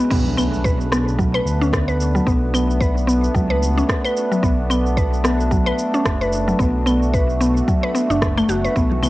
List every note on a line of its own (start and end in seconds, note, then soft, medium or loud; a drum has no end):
0.00 0.11 E3 medium
0.00 0.11 G#3 medium
0.00 1.53 C#4 loud
0.00 1.18 G#4 medium
0.00 9.09 B4 medium
0.10 1.40 B1 loud
0.10 0.25 B3 medium
0.10 8.76 D4 medium
0.10 kick loud
0.10 crash medium
0.10 impact medium
0.10 shaker soft
0.23 9.09 A3 medium
0.23 9.09 B3 medium
0.27 9.09 F#4 medium
0.37 0.46 B3 medium
0.37 claves medium
0.37 shaker medium
0.54 shaker soft
0.64 0.91 B4 medium
0.64 kick loud
0.64 shaker soft
0.81 shaker soft
0.92 1.18 B3 medium
0.92 cross-stick medium
0.92 shaker medium
1.08 shaker soft
1.18 1.34 F#3 medium
1.18 kick loud
1.18 shaker soft
1.34 1.45 B4 loud
1.34 claves medium
1.45 2.20 D2 loud
1.45 shaker medium
1.61 1.87 C#4 medium
1.61 shaker soft
1.73 kick loud
1.73 cross-stick medium
1.73 shaker soft
1.88 1.95 B4 medium
1.88 shaker soft
2.00 shaker medium
2.15 2.26 F#3 medium
2.15 shaker soft
2.27 3.29 B1 loud
2.27 2.42 B3 medium
2.27 kick loud
2.27 shaker soft
2.54 2.63 B3 medium
2.54 claves medium
2.54 shaker medium
2.70 shaker soft
2.81 3.07 B4 medium
2.81 kick loud
2.81 shaker soft
2.97 shaker soft
3.07 3.34 B3 medium
3.07 shaker medium
3.24 shaker soft
3.35 3.83 C#2 loud
3.35 3.50 F#3 medium
3.35 kick loud
3.35 shaker soft
3.50 3.61 B4 loud
3.63 shaker medium
3.78 4.03 C#4 medium
3.78 shaker soft
3.89 kick loud
3.89 cross-stick medium
3.89 shaker soft
4.05 4.11 B4 medium
4.05 claves medium
4.05 shaker soft
4.17 shaker medium
4.32 4.43 F#3 medium
4.32 shaker soft
4.43 5.72 B1 medium
4.43 4.58 B3 medium
4.43 kick loud
4.43 shaker soft
4.70 4.79 B3 medium
4.70 claves medium
4.70 shaker medium
4.86 shaker soft
4.97 5.23 B4 medium
4.97 kick loud
4.97 shaker soft
5.13 shaker soft
5.24 5.50 B3 medium
5.24 cross-stick medium
5.24 shaker medium
5.40 shaker soft
5.51 5.66 F#3 medium
5.51 kick loud
5.51 shaker soft
5.66 5.78 B4 loud
5.66 claves medium
5.79 shaker medium
5.94 6.20 C#4 medium
5.94 shaker soft
6.05 6.53 F#1 medium
6.05 kick loud
6.05 cross-stick medium
6.05 shaker soft
6.21 6.28 B4 medium
6.21 shaker soft
6.33 shaker medium
6.48 6.59 F#3 medium
6.48 shaker soft
6.59 7.62 B1 medium
6.59 6.74 B3 medium
6.59 kick medium
6.59 shaker soft
6.86 6.95 B3 medium
6.86 claves medium
6.86 shaker medium
7.03 shaker soft
7.14 7.39 B4 medium
7.14 kick loud
7.14 shaker soft
7.30 shaker soft
7.41 7.67 B3 medium
7.41 shaker medium
7.57 shaker soft
7.68 7.83 F#3 medium
7.68 kick loud
7.68 shaker soft
7.83 7.94 B4 loud
7.95 8.09 B3 medium
7.95 shaker medium
8.10 8.42 F#1 loud
8.10 8.21 D4 medium
8.10 shaker soft
8.22 kick loud
8.22 cross-stick medium
8.22 shaker soft
8.38 8.48 A3 loud
8.38 claves medium
8.38 shaker soft
8.49 8.68 F#1 medium
8.49 8.64 F#4 medium
8.49 shaker medium
8.65 8.75 B4 medium
8.65 shaker soft
8.76 9.09 B1 loud
8.76 9.09 E3 medium
8.76 8.91 B3 medium
8.76 kick medium
8.76 shaker soft
8.92 high conga medium
9.02 9.09 B3 medium
9.02 9.09 D4 medium
9.02 low conga medium
9.02 claves medium
9.02 shaker medium